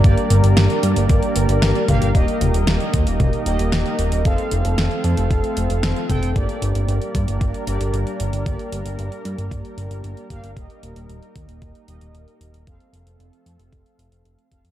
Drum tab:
HH |xxxxxxxxxxxxxxxx|xxxxxxxxxxxxxxxx|xxxxxxxxxxxxxxxx|xxxxxxxxxxxxxxxx|
SD |----o-------o---|----o-------o---|----o-------o---|----------------|
T2 |--------------o-|--o-----o-------|--------------o-|----------------|
BD |o-------o-----o-|o-----o-o-------|o-------o-----o-|o-----o-o-------|

HH |xxxxxxxxxxxxxxxx|xxxxxxxxxxxxxxxx|xxxxxxxxxxxxxxxx|
SD |----------------|----------------|----------------|
T2 |----------------|----------------|----------------|
BD |o-------o-----o-|o-----o-o-------|o-------o-----o-|